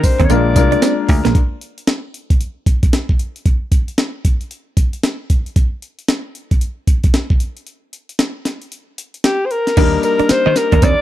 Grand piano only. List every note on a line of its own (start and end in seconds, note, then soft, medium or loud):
0.00 0.32 G3 medium
0.00 0.32 C4 medium
0.00 0.30 D4 medium
0.00 0.32 D#4 medium
0.00 0.31 A#4 medium
0.29 0.52 G#3 medium
0.29 0.52 A#3 medium
0.29 0.52 D4 medium
0.29 0.52 F4 medium
0.29 0.52 A#4 medium
0.56 1.06 G#3 medium
0.56 1.06 A#3 medium
0.56 1.07 D4 medium
0.56 1.07 F4 medium
0.56 1.07 A#4 medium
9.77 10.46 G3 medium
9.77 10.46 A#3 medium
9.77 10.46 D4 medium
9.77 10.47 D#4 medium
9.77 10.47 A#4 medium